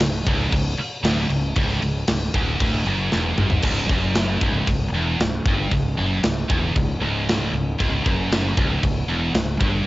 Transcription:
0.00 0.25 C#1 medium
0.00 0.21 C#2 medium
0.00 snare loud
0.00 crash medium
0.26 0.51 C#1 loud
0.26 0.52 C#2 medium
0.26 kick loud
0.26 crash medium
0.52 0.76 C#1 medium
0.52 0.74 C#2 medium
0.52 kick loud
0.52 crash medium
0.77 muted fingered electric bass stroke soft
0.77 muted distorted electric guitar stroke medium
0.77 crash medium
1.03 1.28 D1 medium
1.03 1.29 D2 loud
1.03 snare loud
1.03 crash medium
1.30 1.54 C#1 medium
1.30 1.51 C#2 medium
1.30 crash medium
1.55 1.80 C#1 medium
1.55 1.81 C#2 medium
1.55 kick loud
1.55 crash medium
1.82 2.06 C#1 medium
1.82 2.03 C#2 medium
1.82 crash medium
2.07 2.32 C#1 medium
2.07 2.29 C#2 medium
2.07 snare loud
2.07 crash medium
2.34 2.58 D1 medium
2.34 2.59 D2 medium
2.34 kick loud
2.34 crash medium
2.60 2.84 D1 medium
2.60 2.85 D2 loud
2.60 kick loud
2.60 crash medium
2.86 3.10 F#1 loud
2.86 3.11 F#2 loud
2.86 crash medium
3.11 3.37 E1 medium
3.11 3.37 E2 loud
3.11 snare medium
3.38 3.62 G#1 medium
3.38 3.62 G#2 loud
3.38 mid tom medium
3.50 floor tom loud
3.62 3.87 C#1 loud
3.62 3.89 C#2 loud
3.62 kick loud
3.62 crash loud
3.62 crash medium
3.89 4.38 F#1 medium
3.89 4.41 F#2 loud
3.89 kick medium
4.15 snare loud
4.15 crash medium
4.41 4.66 C#1 medium
4.41 4.67 C#2 medium
4.41 kick loud
4.67 4.91 C#1 medium
4.67 4.89 C#2 medium
4.67 kick medium
4.67 crash medium
4.92 5.17 E1 medium
4.92 5.19 E2 medium
5.20 5.44 C#1 medium
5.20 5.41 C#2 medium
5.20 snare loud
5.20 crash medium
5.45 5.70 G1 loud
5.45 5.72 G2 loud
5.45 kick loud
5.71 5.96 C#1 medium
5.71 5.93 C#2 medium
5.71 kick medium
5.71 crash medium
5.97 6.22 F#1 medium
5.97 6.23 F#2 loud
6.23 6.48 C#1 medium
6.23 6.44 C#2 medium
6.23 snare loud
6.23 crash medium
6.49 6.74 E1 medium
6.49 6.75 E2 medium
6.49 kick loud
6.75 7.00 C#1 medium
6.75 6.96 C#2 medium
6.75 kick medium
6.75 crash medium
7.01 7.49 C#1 medium
7.01 7.52 C#2 medium
7.29 snare loud
7.29 crash medium
7.52 7.77 C#1 medium
7.52 7.74 C#2 medium
7.78 8.04 C#1 medium
7.78 8.04 C#2 loud
7.78 kick loud
7.78 crash medium
8.04 8.54 F#1 medium
8.04 8.56 F#2 loud
8.04 kick loud
8.32 snare loud
8.32 crash medium
8.57 8.81 C#1 medium
8.57 8.82 C#2 medium
8.57 kick loud
8.83 9.07 C#1 medium
8.83 9.04 C#2 medium
8.83 kick medium
8.83 crash medium
9.08 9.33 E1 medium
9.08 9.34 E2 loud
9.34 9.58 C#1 medium
9.34 9.55 C#2 medium
9.34 snare loud
9.34 crash medium
9.60 9.85 G1 medium
9.60 9.86 G2 loud
9.60 kick medium

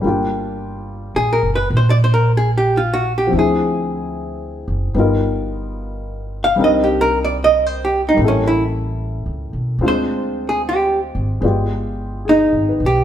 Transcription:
0.00 1.10 G1 medium
0.00 3.30 G3 soft
0.00 3.31 A#3 soft
0.00 0.19 D5 soft
0.04 3.32 D4 soft
0.04 3.33 F4 soft
0.04 3.33 G4 medium
1.15 1.39 A#1 medium
1.15 1.41 G#4 medium
1.33 1.50 A#4 medium
1.43 1.67 F#1 medium
1.55 1.68 B4 medium
1.70 3.29 A#1 medium
1.77 1.90 C5 medium
1.90 1.97 D5 medium
2.04 2.26 C5 medium
2.14 2.31 A#4 medium
2.37 2.50 G#4 medium
2.58 2.80 G4 medium
2.77 3.03 F4 medium
2.93 3.12 F#4 medium
3.18 3.31 G4 medium
3.27 4.92 F3 soft
3.27 4.93 C4 soft
3.33 4.63 D2 medium
3.33 4.95 D4 soft
3.33 4.96 E4 soft
3.39 4.97 G#4 soft
3.39 4.93 G#4 medium
4.68 4.92 F#1 medium
4.94 6.52 G1 medium
4.94 6.54 G3 soft
4.94 6.56 B3 soft
4.94 6.57 D#4 soft
4.99 6.58 F4 soft
4.99 6.58 A#4 medium
6.44 6.56 F5 medium
6.56 8.14 C2 medium
6.56 8.12 G3 medium
6.56 8.18 C4 soft
6.56 8.19 D4 medium
6.56 8.19 D#4 soft
6.61 8.20 A#4 medium
6.61 6.86 D#5 medium
6.84 7.09 G4 medium
7.01 7.18 A#4 medium
7.25 7.37 D5 medium
7.44 7.66 D#5 medium
7.66 7.91 C5 medium
7.85 8.00 G4 medium
8.09 8.19 D#4 medium
8.14 9.22 A1 medium
8.14 9.78 G3 soft
8.14 9.79 A#3 soft
8.20 9.81 C#4 soft
8.20 9.82 E4 soft
8.24 8.49 C#4 medium
8.24 9.83 A4 soft
8.47 8.63 E4 medium
9.26 9.51 C#2 medium
9.53 9.78 B1 medium
9.79 11.11 D2 medium
9.79 11.39 G#3 soft
9.79 11.43 C4 soft
9.79 11.44 D4 soft
9.79 11.44 C5 soft
9.83 11.43 F4 soft
9.88 10.47 C5 medium
10.49 10.61 G#4 medium
10.69 10.99 G4 medium
11.15 11.41 G#1 medium
11.41 12.49 G1 medium
11.41 13.04 G#3 soft
11.41 13.04 B3 soft
11.41 13.04 F4 soft
11.41 13.04 D5 soft
11.46 13.04 G4 soft
12.25 12.91 G#4 soft
12.29 12.85 D#4 medium
12.53 12.79 G#1 medium
12.69 13.04 B4 soft
12.80 13.04 B1 medium
12.86 13.04 G4 medium

